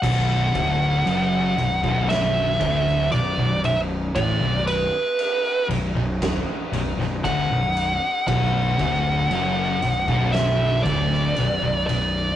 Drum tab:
CC |x---------------|----------------|----------------|
RD |--x-x-x-x-x-x-x-|x-x-x-x-x-x-x-x-|x-x-x-x-x-x-x-x-|
SD |--------o--o----|--------o--o----|--------o--o----|
BD |o-o----o--o-----|o-------o---o---|o-o----o--o-----|